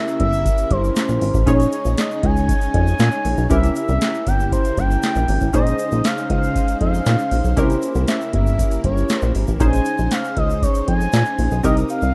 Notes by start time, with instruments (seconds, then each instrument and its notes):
Already playing: string machine C#3 A#3 E4, analog polysynth C#4 E4 G4 A#4, analog synth lead E5
0.08 shaker
0.20 analog synth bass G1, analog synth lead E5, kick, closed hi-hat
0.33 shaker
0.45 kick, closed hi-hat, shaker
0.58 closed hi-hat, shaker
0.71 analog synth bass G1, analog synth lead C5, kick, closed hi-hat
0.84 shaker
0.96 snare, clap, closed hi-hat, shaker
1.09 analog synth bass A#1, shaker
1.21 analog synth bass G#1, open hi-hat, shaker
1.34 analog synth bass A1, kick, shaker
1.46 analog synth bass A#1, string machine C#3 G#3 C#4 D#4, analog polysynth C#4 D#4 G#4 C#5, analog synth lead C#5, kick, closed hi-hat, shaker
1.60 closed hi-hat, shaker
1.72 closed hi-hat, shaker
1.85 analog synth bass A#1, shaker
1.97 analog synth lead D#5, snare, clap, closed hi-hat, shaker
2.11 shaker
2.23 analog synth bass C#2, analog synth lead G#5, kick, closed hi-hat
2.37 shaker
2.49 kick, closed hi-hat, shaker
2.61 closed hi-hat, shaker
2.74 analog synth bass F2, analog synth lead G#5, kick, closed hi-hat
2.87 shaker
2.99 analog synth bass A#2, snare, clap, closed hi-hat, shaker
3.12 shaker
3.25 analog synth bass A#1, open hi-hat, shaker
3.38 analog synth bass B1, shaker
3.50 analog synth bass C2, string machine A#3 E4, analog polysynth C#4 E4 G4 A#4, analog synth lead E5, kick, closed hi-hat, shaker
3.63 closed hi-hat, shaker
3.75 analog synth lead E5, closed hi-hat, shaker
3.88 analog synth bass C2, shaker
4.01 snare, clap, closed hi-hat, shaker
4.14 shaker
4.27 analog synth bass G1, analog synth lead G5, kick, closed hi-hat, shaker
4.40 shaker
4.52 analog synth lead C5, kick, closed hi-hat, shaker
4.65 closed hi-hat, shaker
4.77 analog synth bass G1, analog synth lead G5, kick, closed hi-hat, shaker
4.91 shaker
5.03 snare, clap, closed hi-hat, shaker
5.15 analog synth bass A#1, shaker
5.28 analog synth bass G#1, open hi-hat, shaker
5.41 analog synth bass A1, kick, shaker
5.53 analog synth bass A#1, string machine G#3 D#4 C5, analog polysynth C#4 D#4 G#4 C5, analog synth lead D#5, kick, closed hi-hat, shaker
5.67 closed hi-hat, shaker
5.79 closed hi-hat, shaker
5.92 analog synth bass A#1, shaker
6.04 analog synth lead F5, snare, clap, closed hi-hat, shaker
6.18 shaker
6.30 analog synth bass C#2, analog synth lead F5, kick, closed hi-hat
6.43 shaker
6.55 kick, closed hi-hat, shaker
6.68 closed hi-hat, shaker
6.81 analog synth bass F2, analog synth lead F5, kick, closed hi-hat
6.94 shaker
7.06 analog synth bass A#2, snare, clap, closed hi-hat, shaker
7.19 shaker
7.31 analog synth bass A#1, open hi-hat, shaker
7.44 analog synth bass B1, shaker
7.57 analog synth bass C2, string machine A#3 E4, analog polysynth C#4 E4 G4 A#4, analog synth lead C5, kick, closed hi-hat, shaker
7.70 closed hi-hat, shaker
7.82 closed hi-hat, shaker
7.95 analog synth bass C2, shaker
8.08 analog synth lead E5, snare, clap, closed hi-hat, shaker
8.21 shaker
8.33 analog synth bass G1, analog synth lead E5, kick, closed hi-hat
8.47 shaker
8.59 kick, closed hi-hat, shaker
8.71 closed hi-hat, shaker
8.84 analog synth bass G1, analog synth lead C#5, kick, closed hi-hat
8.97 shaker
9.09 snare, clap, closed hi-hat, shaker
9.20 analog synth bass A#1, analog synth lead C5, shaker
9.35 analog synth bass G#1, open hi-hat, shaker
9.47 analog synth bass A1, kick, shaker
9.60 analog synth bass A#1, string machine G#3 D#4 C5, analog polysynth C#4 D#4 G#4 C5, analog synth lead G#5, kick, closed hi-hat, shaker
9.73 closed hi-hat, shaker
9.85 closed hi-hat, shaker
9.98 analog synth bass A#1, shaker
10.11 analog synth lead F5, snare, clap, closed hi-hat, shaker
10.24 shaker
10.37 analog synth bass C#2, analog synth lead D#5, kick, closed hi-hat
10.50 shaker
10.62 analog synth lead C#5, kick, closed hi-hat, shaker
10.75 closed hi-hat, shaker
10.88 analog synth bass F2, analog synth lead G#5, kick, closed hi-hat
11.01 shaker
11.13 analog synth bass A#2, snare, clap, closed hi-hat, shaker
11.25 shaker
11.39 analog synth bass A#1, open hi-hat, shaker
11.51 analog synth bass B1, shaker
11.63 analog synth bass C2, string machine C3 A#3, analog polysynth C4 D#4 G4 A#4, analog synth lead D#5, kick, closed hi-hat, shaker
11.77 closed hi-hat, shaker
11.89 analog synth lead F5, closed hi-hat, shaker
12.02 analog synth bass C2, shaker